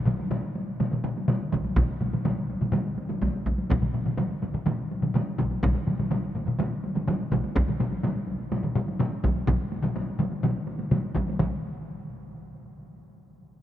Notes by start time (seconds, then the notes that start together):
0.06 taiko low-mid, taiko mid, taiko high
0.19 taiko high
0.31 taiko low-mid, taiko mid, taiko high
0.55 taiko high
0.80 taiko low-mid, taiko mid, taiko high
0.92 taiko low-mid, taiko mid
1.04 taiko low-mid, taiko mid, taiko high
1.17 taiko high
1.28 taiko low-mid, taiko mid, taiko high
1.52 taiko, taiko low-mid, taiko mid, taiko high
1.64 taiko high
1.76 taiko, taiko low-mid, taiko mid, taiko high
2.01 taiko low-mid, taiko mid, taiko high
2.13 taiko low-mid, taiko mid, taiko high
2.25 taiko low-mid, taiko mid, taiko high
2.50 taiko high
2.61 taiko low-mid, taiko mid, taiko high
2.72 taiko low-mid, taiko mid, taiko high
2.98 taiko high
3.09 taiko low-mid, taiko mid, taiko high
3.22 taiko, taiko high
3.46 taiko, taiko high
3.58 taiko high
3.70 taiko, taiko low-mid, taiko mid, taiko high
3.82 taiko low-mid, taiko mid
3.94 taiko low-mid, taiko mid, taiko high
4.06 taiko low-mid, taiko mid, taiko high
4.18 taiko low-mid, taiko mid, taiko high
4.42 taiko low-mid, taiko mid, taiko high
4.54 taiko low-mid, taiko mid
4.66 taiko low-mid, taiko mid, taiko high
4.91 taiko high
5.02 taiko low-mid, taiko mid, taiko high
5.14 taiko low-mid, taiko mid, taiko high
5.38 taiko, taiko low-mid, taiko mid, taiko high
5.51 taiko high
5.63 taiko, taiko low-mid, taiko mid, taiko high
5.75 taiko low-mid, taiko mid
5.86 taiko low-mid, taiko mid, taiko high
5.99 taiko low-mid, taiko mid, taiko high
6.11 taiko low-mid, taiko mid, taiko high
6.35 taiko low-mid, taiko mid, taiko high
6.47 taiko low-mid, taiko mid
6.59 taiko low-mid, taiko mid, taiko high
6.83 taiko high
6.95 taiko low-mid, taiko mid, taiko high
7.07 taiko low-mid, taiko mid, taiko high
7.32 taiko, taiko low-mid, taiko mid, taiko high
7.44 taiko high
7.55 taiko, taiko low-mid, taiko mid, taiko high
7.68 taiko low-mid, taiko mid
7.80 taiko low-mid, taiko mid, taiko high
7.92 taiko high
8.03 taiko low-mid, taiko mid, taiko high
8.27 taiko high
8.52 taiko low-mid, taiko mid, taiko high
8.63 taiko low-mid, taiko mid
8.75 taiko low-mid, taiko mid, taiko high
8.88 taiko high
8.99 taiko low-mid, taiko mid, taiko high
9.24 taiko, taiko low-mid, taiko mid, taiko high
9.36 taiko high
9.47 taiko, taiko low-mid, taiko mid, taiko high
9.72 taiko high
9.83 taiko low-mid, taiko mid, taiko high
9.96 taiko high
10.19 taiko low-mid, taiko mid, taiko high
10.32 taiko high
10.43 taiko low-mid, taiko mid, taiko high
10.67 taiko high
10.79 taiko high
10.91 taiko low-mid, taiko mid, taiko high
11.15 taiko, taiko low-mid, taiko mid, taiko high
11.28 taiko high
11.39 taiko, taiko low-mid, taiko mid, taiko high